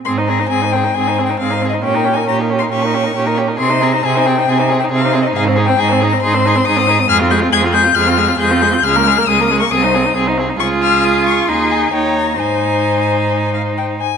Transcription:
<<
  \new Staff \with { instrumentName = "Violin" } { \time 4/4 \key aes \major \tempo 4 = 136 c'''8 bes''8 aes''8 g''8 \tuplet 3/2 { aes''4 g''8 f''4 ees''8 } | \tuplet 3/2 { g''4 aes''8 bes''4 c'''8 } des'''4. r8 | c'''8 bes''8 aes''8 g''8 \tuplet 3/2 { aes''4 g''8 f''4 ees''8 } | \tuplet 3/2 { f''4 g''8 aes''4 bes''8 } c'''4 ees'''4 |
f'''8 g'''8 aes'''8 g'''8 f'''4 g'''4 | f'''4 ees'''8. des'''16 ees'''4 r4 | des'''8 f'''8 ees'''8 des'''8 c'''8 aes''8 g''8 bes''8 | aes''2~ aes''8 f''8 g''8 aes''8 | }
  \new Staff \with { instrumentName = "Violin" } { \time 4/4 \key aes \major aes'16 c''16 aes'16 c''16 aes'16 c''16 aes'16 c''16 aes'16 c''16 aes'16 c''16 aes'16 c''16 aes'16 c''16 | g'16 bes'16 g'16 bes'16 g'16 bes'16 g'16 bes'16 g'16 bes'16 g'16 bes'16 g'16 bes'16 g'16 bes'16 | aes'16 c''16 aes'16 c''16 aes'16 c''16 aes'16 c''16 aes'16 c''16 aes'16 c''16 aes'16 c''16 aes'16 c''16 | aes'16 c''16 aes'16 c''16 aes'16 c''16 aes'16 c''16 aes'16 c''16 aes'16 c''16 aes'16 c''16 aes'16 c''16 |
aes'16 f'16 aes'16 f'16 aes'16 f'16 aes'16 f'16 aes'16 f'16 aes'16 f'16 aes'16 f'16 aes'16 f'16 | aes'16 bes'16 aes'16 bes'16 aes'16 bes'16 aes'16 bes'16 aes'16 c''16 aes'16 c''16 aes'16 c''16 aes'16 c''16 | aes'2 aes'4 des''4 | c''2.~ c''8 r8 | }
  \new Staff \with { instrumentName = "Viola" } { \time 4/4 \key aes \major c'16 ees'16 c'16 ees'16 c'16 ees'16 c'16 ees'16 c'16 ees'16 c'16 ees'16 c'16 ees'16 c'16 ees'16 | des'16 ees'16 des'16 ees'16 des'16 ees'16 des'16 ees'16 des'16 ees'16 des'16 ees'16 des'16 ees'16 des'16 ees'16 | c'16 ees'16 c'16 ees'16 c'16 ees'16 c'16 ees'16 c'16 ees'16 c'16 ees'16 c'16 ees'16 c'16 ees'16 | ees'16 c'16 ees'16 c'16 ees'16 c'16 ees'16 c'16 ees'16 c'16 ees'16 c'16 ees'16 c'16 ees'16 c'16 |
aes16 c'16 aes16 c'16 aes16 c'16 aes16 c'16 aes16 c'16 aes16 c'16 aes16 c'16 aes16 c'16 | aes16 bes16 aes16 bes16 aes16 bes16 aes16 bes16 c'16 ees'16 c'16 ees'16 c'16 ees'16 c'16 ees'16 | f'2 ees'4 ees'4 | ees'2.~ ees'8 r8 | }
  \new Staff \with { instrumentName = "Cello" } { \clef bass \time 4/4 \key aes \major aes,4 aes,4 aes,4 aes,4 | bes,4 bes,4 bes,4 bes,4 | c4 c4 c4 c4 | aes,4 aes,4 aes,4 aes,4 |
f,4 f,4 f,4 f,4 | des,4 des,4 c,4 c,4 | des,2 ees,4 ees,4 | aes,2.~ aes,8 r8 | }
>>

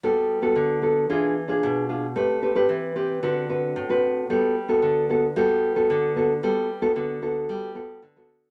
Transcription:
\new Staff \with { instrumentName = "Nylon-string guitar" } { \time 4/4 \key g \major \tempo 4 = 113 << { <b fis' a'>8. <b fis' a'>8. <b fis' a'>8 <d' f' gis'>8 r16 <d' f' gis'>8. <d' f' gis'>16 r16 | <c' g' b'>8 <c' g' b'>16 <c' g' b'>8. <c' g' b'>8 <c' fis' b'>8 <c' fis' b'>8. <c' fis' b'>8. | <b fis' a'>8 r16 <b fis' a'>8. <b fis' a'>16 r16 <b fis' a'>8. <b fis' a'>8. <b fis' a'>16 r16 | <b fis' a'>8 r16 <b fis' a'>16 <b fis' a'>8 <b fis' a'>4 <b fis' a'>8 r16 <b fis' a'>8. | } \\ { g4 d4 e4 b,4 | a4 e4 d4 a,4 | g4 d4 g4 d4 | g4 d4 g4 d4 | } >> }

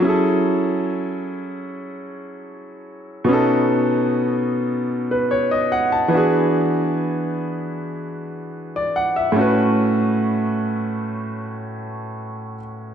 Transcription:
\new Staff \with { instrumentName = "Grand piano" } { \time 4/4 \key fis \minor \tempo 4 = 74 << { r1 | r2 r16 b'16 cis''16 dis''16 fis''16 a''8 r16 | r2 r8. d''16 fis''16 e''8 r16 | r1 | } \\ { <fis cis' e' gis' a'>1 | <b, b cis' dis' a'>2.~ <b, b cis' dis' a'>8 <e b d' fis' gis'>8~ | <e b d' fis' gis'>2.~ <e b d' fis' gis'>8 <a, a cis' fis' b'>8~ | <a, a cis' fis' b'>2.~ <a, a cis' fis' b'>8 r8 | } >> }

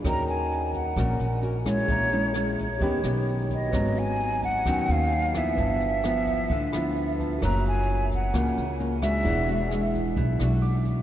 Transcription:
<<
  \new Staff \with { instrumentName = "Flute" } { \time 4/4 \key ees \minor \tempo 4 = 130 bes''8 aes''4 ges''4. r8 des''8~ | des''4. r2 ees''8~ | ees''8 aes''4 ges''4 f''4 fes''8~ | fes''2.~ fes''8 r8 |
bes''8 aes''4 ges''4. r8 fes''8~ | fes''4. r2 r8 | }
  \new Staff \with { instrumentName = "Tine electric piano" } { \time 4/4 \key ees \minor << { r1 | r1 | r1 | r2 r8 b''8 e''4 |
r1 | r2. d'''4 | } \\ { <ges' des'' ees'' bes''>1 | <aes' des'' fes'' bes''>2 <g' des'' ees'' b''>2 | <ges' ces'' des'' bes''>1 | <b' e'' a''>2.~ <b' e'' a''>8 <f' b' e'' a''>8 |
<ges' bes' des'' ges'''>1 | <e' gis' d'' fis''>1 | } >> }
  \new Staff \with { instrumentName = "Nylon-string guitar" } { \time 4/4 \key ees \minor << { <des' ges' bes'>2 <des' ges' bes'>8 r8 <des' ges' bes'>8 <aes des' fes'>8~ | <aes des' fes'>8 <aes des' fes'>8 <aes des' fes'>8 r8 <b des' g'>8 <b des' g'>4. | <ges ces' des'>2 <ges ces' des'>4 r8 <f ces' fes'>8~ | <f ces' fes'>4 <f b e'>4 r8 <f b e'>4. |
<bes des' f'>2 <bes des' f'>8 r8 <bes des' f'>8 <aes d' ges'>8~ | <aes d' ges'>8 <gis d' fis'>8 <gis d' fis'>4 r8 <gis d' fis'>4. | } \\ { ees2 bes,2 | bes,2 ees2 | aes,2 ees2 | g,2 d2 |
ges2 des2 | e2 b,2 | } >> }
  \new Staff \with { instrumentName = "Upright bass" } { \clef bass \time 4/4 \key ees \minor ees,2 bes,,8 bes,,4. | bes,,2 ees,8 b,,4. | aes,,2 ees,8 ees,4. | g,,2 d,8 d,4. |
ges,,2 des,8 des,4. | e,,2 b,,8 b,,4. | }
  \new DrumStaff \with { instrumentName = "Drums" } \drummode { \time 4/4 <hh bd ss>8 hh8 hh8 <hh bd>8 <hh bd ss>8 hh8 hh8 <hh bd ss>8 | <hh bd>8 hh8 <hh ss>8 <hh bd>8 <hh bd>8 <hh ss>8 hh8 <hh bd>8 | <hh bd ss>8 hh8 hh8 <hh bd>8 <hh bd ss>8 hh8 hh8 <hh bd ss>8 | <hh bd>8 hh8 <hh ss>8 <hh bd>8 <hh bd>8 <hh ss>8 hh8 <hh bd>8 |
<hh bd ss>8 hh8 hh8 <hh bd>8 <hh bd ss>8 hh8 hh8 <hh bd ss>8 | <hh bd>8 hh8 <hh ss>8 <hh bd>8 <hh bd>8 <hh ss>8 hh8 <hh bd>8 | }
>>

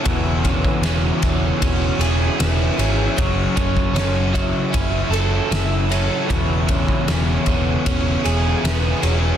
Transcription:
<<
  \new Staff \with { instrumentName = "Overdriven electric guitar" } { \time 4/4 \key e \mixolydian \tempo 4 = 77 e8 cis'8 gis'8 b8 cis'8 gis'8 b8 gis'8 | fis8 cis'8 a'8 e'8 cis'8 a'8 e'8 a'8 | e8 cis'8 gis'8 b8 cis'8 gis'8 b8 gis'8 | }
  \new Staff \with { instrumentName = "Overdriven electric guitar" } { \time 4/4 \key e \mixolydian e8 d8 cis'8 d8 cis'8 gis'8 e'8 cis'8 | fis8 cis'8 cis'8 fis8 cis'8 a'8 e'8 cis'8 | e8 d8 cis'8 d8 cis'8 gis'8 b8 cis'8 | }
  \new Staff \with { instrumentName = "Twelve-string acoustic guitar" } { \time 4/4 \key e \mixolydian fis8 cis'8 fis8 cis'4 gis'4 fis8 | cis'8 cis'8 cis'8 cis'8 e'8 a'8 e'8 cis'8 | fis8 cis'8 fis8 cis'4 gis'4 fis8 | }
  \new Staff \with { instrumentName = "Overdriven electric guitar" } { \clef bass \time 4/4 \key e \mixolydian <e, b, e>1 | <fis, cis fis>1 | <e, b, e>1 | }
  \new Staff \with { instrumentName = "Fingered electric bass" } { \clef bass \time 4/4 \key e \mixolydian e,,4 e,,8 e,,8 e,,8 e,,8 e,,8 gis,,8 | fis,,8 fis,,8 fis,,4 fis,,8 fis,,8 fis,,4 | e,,4 e,,8 e,,8 e,,8 e,,8 e,,8 e,,8 | }
  \new DrumStaff \with { instrumentName = "Drums" } \drummode { \time 4/4 <bd cymr>8 <bd cymr>16 bd16 <cymr sn>8 <bd cymr sn>8 <bd cymr>8 cymr8 <cymr sn>8 cymr8 | <bd cymr>8 <bd cymr>16 bd16 <cymr sn>8 <bd cymr>8 <bd cymr>8 cymr8 <cymr sn>8 cymr8 | <bd cymr>8 <bd cymr>16 bd16 <cymr sn>8 <bd cymr>8 <bd cymr>8 cymr8 <cymr sn>8 cymr8 | }
>>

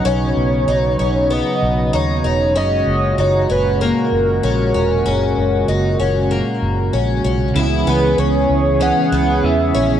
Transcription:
<<
  \new Staff \with { instrumentName = "Soft synth lead" } { \time 4/4 \key fis \mixolydian \tempo 4 = 96 cis''2 dis''4 cis''4 | dis''4 cis''8 b'8 ais'2~ | ais'2. r4 | r8 b'8 cis''4 fis''4 e''4 | }
  \new Staff \with { instrumentName = "Twelve-string acoustic guitar" } { \time 4/4 \key fis \mixolydian cis'4 dis'8 cis'8 b4 dis'8 dis'8 | cis'4 dis'8 cis'8 ais4 cis'8 cis'8 | cis'4 dis'8 cis'8 ais4 cis'8 cis'8 | e'8 b8 cis'4 cis'8 b4 cis'8 | }
  \new Staff \with { instrumentName = "Analog synth pad" } { \time 4/4 \key fis \mixolydian << { <fis b dis'>1 | <ais, gis fis'>1~ | <ais, gis fis'>1 | <b cis' gis'>1 | } \\ { cis1~ | cis1~ | cis1 | e1 | } >> }
  \new Staff \with { instrumentName = "Clean electric guitar" } { \time 4/4 \key fis \mixolydian r1 | r1 | r1 | <cis gis b e'>2 <cis gis b e'>4 <cis gis b e'>4 | }
  \new Staff \with { instrumentName = "Fingered electric bass" } { \clef bass \time 4/4 \key fis \mixolydian b,,8 b,,8 b,,8 b,,8. r16 b,,8 dis,8 e,,8 | fis,,8 fis,,8 fis,,8 fis,,8. r16 fis,,8 ais,,8 e,,8 | fis,,8 fis,,8 fis,,8 fis,,8. r16 fis,,8 ais,,8 b,,8 | cis,8 cis,8 cis,8 cis,8. r16 cis,8 e,8 ais,,8 | }
>>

